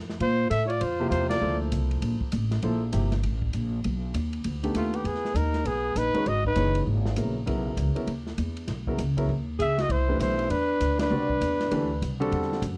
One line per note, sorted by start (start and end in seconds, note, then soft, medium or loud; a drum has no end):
0.00 0.19 F2 medium
0.10 snare soft
0.20 0.49 A#2 medium
0.20 0.48 F4 medium
0.20 0.49 C5 medium
0.20 ride medium
0.50 0.80 A2 medium
0.50 0.63 A4 medium
0.50 0.64 E5 medium
0.50 hi-hat pedal soft
0.50 ride medium
0.65 0.69 E4 medium
0.65 0.79 F4 medium
0.65 0.71 C#5 medium
0.69 0.82 D5 medium
0.69 ride soft
0.79 1.10 F2 medium
0.79 1.09 F4 medium
0.79 1.10 C5 medium
0.79 ride medium
1.00 1.39 C3 medium
1.00 1.39 F3 medium
1.00 1.39 A#3 medium
1.00 1.39 E4 medium
1.00 1.39 G4 medium
1.09 1.40 E2 medium
1.09 1.28 F4 medium
1.09 1.28 C5 medium
1.09 hi-hat pedal soft
1.09 ride medium
1.29 1.57 F4 medium
1.29 1.58 D5 medium
1.29 snare medium
1.29 ride medium
1.41 1.71 D2 medium
1.41 2.25 F3 medium
1.41 2.25 A#3 medium
1.41 2.25 E4 medium
1.41 2.26 A4 medium
1.41 2.26 C5 medium
1.72 2.01 C2 medium
1.72 hi-hat pedal medium
1.72 ride medium
1.91 ride soft
2.02 2.20 A#1 medium
2.02 ride medium
2.21 muted upright bass stroke soft
2.21 kick medium
2.32 2.62 A1 medium
2.32 hi-hat pedal medium
2.32 ride medium
2.51 snare medium
2.51 ride soft
2.62 2.92 A#1 medium
2.62 2.80 F3 medium
2.62 2.80 A#3 medium
2.62 2.80 E4 medium
2.62 2.80 A4 medium
2.62 2.80 C5 medium
2.62 ride medium
2.92 3.23 G1 medium
2.92 3.10 C3 medium
2.92 3.09 F3 medium
2.92 3.10 A#3 medium
2.92 3.10 E4 medium
2.92 3.10 G4 medium
2.92 hi-hat pedal medium
2.92 ride medium
3.12 snare soft
3.12 ride soft
3.23 3.53 A1 medium
3.23 ride medium
3.42 kick medium
3.53 3.83 A#1 medium
3.53 hi-hat pedal soft
3.53 ride medium
3.84 4.14 B1 medium
3.84 ride medium
4.14 4.43 D#2 medium
4.14 hi-hat pedal soft
4.14 ride medium
4.33 ride soft
4.44 4.74 D2 medium
4.44 ride medium
4.63 5.03 D#3 medium
4.63 5.03 A3 medium
4.63 5.03 B3 medium
4.63 5.03 D4 medium
4.63 5.03 G4 medium
4.63 ride soft
4.75 5.04 D#2 medium
4.75 4.95 A3 medium
4.75 4.97 F4 medium
4.75 hi-hat pedal medium
4.75 ride medium
4.94 5.04 B3 medium
4.94 5.08 G4 medium
4.94 ride soft
5.04 5.34 E2 medium
5.04 5.36 B3 medium
5.04 5.38 G#4 medium
5.04 ride medium
5.15 snare soft
5.25 snare soft
5.34 5.64 D#2 medium
5.34 5.67 D#4 medium
5.34 5.68 A#4 medium
5.34 hi-hat pedal medium
5.34 ride medium
5.54 snare soft
5.54 ride soft
5.65 5.95 B1 medium
5.65 5.98 B3 medium
5.65 5.99 G#4 medium
5.65 ride medium
5.95 6.13 A#1 medium
5.95 6.28 D#4 medium
5.95 6.29 B4 medium
5.95 hi-hat pedal medium
5.95 ride medium
6.14 6.25 D#3 medium
6.14 6.25 G#3 medium
6.14 6.25 C#4 medium
6.14 6.25 F#4 medium
6.14 6.25 B4 medium
6.14 muted upright bass stroke soft
6.14 ride soft
6.26 6.55 G#1 medium
6.26 6.45 F#4 medium
6.26 6.46 D#5 medium
6.26 ride medium
6.45 6.84 D#4 medium
6.45 6.85 B4 medium
6.45 kick soft
6.55 6.86 F#1 medium
6.55 7.02 A#2 medium
6.55 7.02 E3 medium
6.55 7.02 D#4 medium
6.55 7.02 G#4 soft
6.55 7.02 C#5 medium
6.55 hi-hat pedal medium
6.55 ride medium
6.75 ride medium
6.87 7.16 G#1 medium
7.05 snare medium
7.16 7.46 A#1 medium
7.16 7.34 C#3 medium
7.16 7.34 F#3 medium
7.16 7.34 B3 medium
7.16 7.34 E4 soft
7.16 7.34 A#4 medium
7.16 hi-hat pedal medium
7.16 ride medium
7.46 7.76 B1 medium
7.46 7.92 C#3 medium
7.46 7.92 F#3 medium
7.46 7.92 B3 medium
7.46 7.93 E4 medium
7.46 7.93 A#4 medium
7.46 ride medium
7.77 7.95 C#2 medium
7.77 hi-hat pedal medium
7.77 ride medium
7.95 8.06 C#3 medium
7.95 8.06 F#3 medium
7.95 8.06 B3 medium
7.95 8.06 E4 medium
7.95 8.06 A#4 medium
7.95 muted upright bass stroke soft
7.95 ride soft
8.07 8.37 D#2 medium
8.07 ride medium
8.27 snare soft
8.38 8.67 E2 medium
8.38 hi-hat pedal soft
8.38 ride medium
8.57 ride soft
8.67 8.97 B1 medium
8.67 snare soft
8.67 ride medium
8.87 8.98 C#3 medium
8.87 8.98 F#3 medium
8.87 8.98 B3 medium
8.87 8.98 E4 medium
8.87 8.98 A#4 medium
8.87 kick medium
8.98 9.28 C#2 medium
8.98 hi-hat pedal medium
8.98 ride medium
9.17 9.28 C#3 medium
9.17 9.28 F#3 medium
9.17 9.28 B3 medium
9.17 9.28 E4 medium
9.17 9.28 A#4 medium
9.17 kick soft
9.17 ride medium
9.29 9.58 D#2 medium
9.59 9.89 C#2 medium
9.59 9.79 G#4 medium
9.59 9.83 E5 medium
9.59 hi-hat pedal medium
9.59 ride medium
9.78 9.91 F#4 medium
9.78 9.93 D#5 medium
9.78 snare medium
9.78 ride soft
9.89 10.19 C2 medium
9.89 10.18 E4 medium
9.89 10.21 C5 medium
9.89 ride medium
10.08 10.48 E3 medium
10.08 10.48 A3 medium
10.08 10.48 D4 medium
10.08 10.48 G4 medium
10.08 10.48 B4 medium
10.19 10.49 B1 medium
10.19 10.51 E4 medium
10.19 10.52 C5 medium
10.19 hi-hat pedal medium
10.19 ride medium
10.39 ride soft
10.50 10.79 E2 medium
10.50 10.99 D4 medium
10.50 11.00 B4 medium
10.50 ride medium
10.80 11.10 D2 medium
10.80 hi-hat pedal medium
10.80 ride medium
10.99 12.17 D4 medium
10.99 12.18 B4 medium
10.99 snare medium
10.99 ride medium
11.10 11.40 C2 medium
11.10 11.28 G3 medium
11.10 11.28 C4 medium
11.10 11.28 F#4 medium
11.10 11.28 B4 medium
11.10 11.28 D5 medium
11.30 kick medium
11.41 11.70 E2 medium
11.41 hi-hat pedal medium
11.41 ride medium
11.60 snare soft
11.60 ride soft
11.71 12.01 D2 medium
11.71 11.88 E3 medium
11.71 11.89 A3 medium
11.71 11.88 D4 medium
11.71 11.89 G4 medium
11.71 11.89 B4 medium
11.71 ride medium
12.02 12.31 C2 medium
12.02 hi-hat pedal medium
12.02 ride medium
12.20 12.60 D3 medium
12.20 12.60 G3 medium
12.20 12.60 C4 medium
12.20 12.60 F#4 medium
12.20 12.60 A4 medium
12.20 ride soft
12.32 12.61 E2 medium
12.32 ride medium
12.42 snare soft
12.52 snare soft
12.62 12.78 F#2 loud
12.62 hi-hat pedal medium
12.62 ride medium